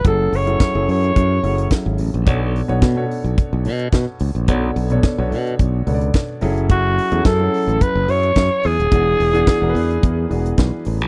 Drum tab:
HH |x-oxx-oxx-oxx-ox|x-oxx-oxx-oxx-ox|x-oxx-oxx-oxx-ox|x-oxx-oxx-oxx-ox|
SD |----o-------o---|----o-------o---|----o-------o---|----o-------o---|
BD |o---o---o---o---|o---o---o---o---|o---o---o---o---|o---o---o---o---|

HH |x-oxx-oxx-oxx-ox|
SD |----o-------o---|
BD |o---o---o---o---|